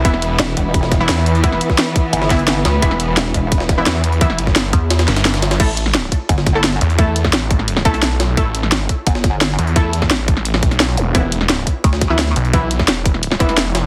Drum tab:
CC |----------------|----------------|----------------|----------------|
HH |x-x-x-x-x-x-x-xx|x-x-x-x-x-xxx-x-|x-x-x-x-x-x-x-xx|x-x-x-x-xxxxxxxx|
SD |-o--o----oo-oo--|-o-oo----oo-o-o-|-o--o----oo-oo--|-o-oo---oooooooo|
BD |o-----o-o-o-----|o--o--o---o-----|o-----o-o-o-----|o--o--o---------|

CC |x---------------|----------------|----------------|----------------|
HH |x-x-x-x-x-x-x-xx|x-x-x-x-x-xxx-x-|x-x-x-x-x-x-x-xx|x-x-x-x-x-xxx-x-|
SD |---oo----oo-oo--|---oo--o-o-oo-o-|---oo----oo-oo--|---oo--o-o-ooo--|
BD |o-----o-o-o-----|o--o--o---o-----|o-----o-o-o-----|o--o--o---o-----|

CC |----------------|----------------|
HH |x-x-x-x-x-x-x-xx|x-x-x-x-x-xxx-x-|
SD |---oo----oo-oo--|---oo--o-o-oo-o-|
BD |o-----o-o-o-----|o--o--o---o-----|